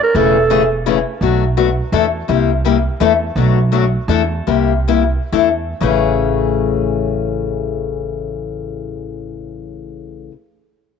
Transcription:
0.03 clarinet A#4
0.15 upright bass E1, steel-string acoustic guitar C#3 E3 A3 C#4 G#4, clarinet A4
0.50 steel-string acoustic guitar C#3 E3 A3 C#4 G#4
0.86 steel-string acoustic guitar C#3 E3 A3 C#4 G#4
1.21 upright bass B1, steel-string acoustic guitar B2 F#3 A3 D4 F#4
1.57 steel-string acoustic guitar B2 F#3 A3 D4 F#4
1.92 upright bass E2, steel-string acoustic guitar E3 A3 D4 E4 A4
2.28 upright bass C2, steel-string acoustic guitar C3 G3 A#3 E4 G4
2.65 steel-string acoustic guitar C3 G3 A#3 E4 G4
3.00 upright bass E2, steel-string acoustic guitar E3 A3 D4 E4 A4
3.36 upright bass B1, steel-string acoustic guitar B2 F#3 A3 D4 F#4
3.72 steel-string acoustic guitar B2 F#3 A3 D4 F#4
4.08 upright bass E2, steel-string acoustic guitar E3 A3 D4 E4 A4
4.47 upright bass C2, steel-string acoustic guitar C3 G3 A#3 E4 G4
4.88 steel-string acoustic guitar C3 G3 A#3 E4 G4
5.32 upright bass E2, steel-string acoustic guitar E3 A3 D4 E4 A4
5.81 upright bass A1, steel-string acoustic guitar A2 C#3 E3 A3 C#4 G#4

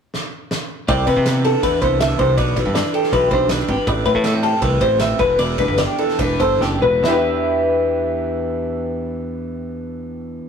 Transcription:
0.14 snare
0.51 snare
0.88 picked electric bass C2, clean electric guitar C3 G4 D5, kick, ride
1.07 picked electric bass C3, clean electric guitar E3 B4, kick, ride
1.16 picked electric bass C3, kick
1.26 clean electric guitar B3 D5, snare, ride
1.44 clean electric guitar D4 A4, ride
1.63 picked electric bass E2, clean electric guitar E3 B4, kick, ride
1.82 picked electric bass C2, clean electric guitar B3 C5, kick, ride
2.01 clean electric guitar D3 E5, snare, ride
2.19 picked electric bass C2, clean electric guitar C3 C5, kick, ride
2.38 picked electric bass B1, clean electric guitar B2 B4 D5, kick, ride
2.56 picked electric bass B1, clean electric guitar E3 B4, kick, ride
2.66 picked electric bass G2, kick
2.75 clean electric guitar D4 D5, snare, ride
2.85 snare
2.94 clean electric guitar G4 A4, ride
3.03 snare
3.13 picked electric bass B1, clean electric guitar E3 B4, kick, ride
3.31 picked electric bass B1, clean electric guitar D4 C5, kick, ride
3.49 clean electric guitar B4 D5, snare, ride
3.59 snare
3.68 picked electric bass G#1, clean electric guitar G4 B4, kick, ride
3.87 picked electric bass A1, clean electric guitar A2 B4 D5, kick, ride
4.05 picked electric bass A2, clean electric guitar E3 B4, kick, ride
4.15 picked electric bass A2, kick
4.24 clean electric guitar A3 D5, snare, ride
4.34 clean electric guitar C4
4.43 clean electric guitar G4 A4, ride
4.62 picked electric bass C2, clean electric guitar E3 B4, kick, ride
4.81 picked electric bass A1, clean electric guitar C4 C5, kick, ride
5.00 clean electric guitar B4 E5, snare, ride
5.19 picked electric bass E1, clean electric guitar E2 B4, kick, ride
5.39 picked electric bass E1, clean electric guitar E3 D5, ride
5.58 picked electric bass E1, clean electric guitar D4 B4, kick, ride
5.68 picked electric bass G1, kick
5.78 clean electric guitar G4 D5, snare, ride
5.98 clean electric guitar E3 A4, ride
6.09 snare
6.19 picked electric bass E1, clean electric guitar D4 B4, kick, ride
6.40 picked electric bass G1, clean electric guitar A4 C5, kick, ride
6.61 picked electric bass F#1, clean electric guitar G4 D5, snare
6.82 picked electric bass E1, clean electric guitar E2 B4, floor tom
7.03 picked electric bass E2, clean electric guitar E2 E3 E4, snare
7.08 clean electric guitar D4 G4
7.12 clean electric guitar B4
7.16 clean electric guitar E5

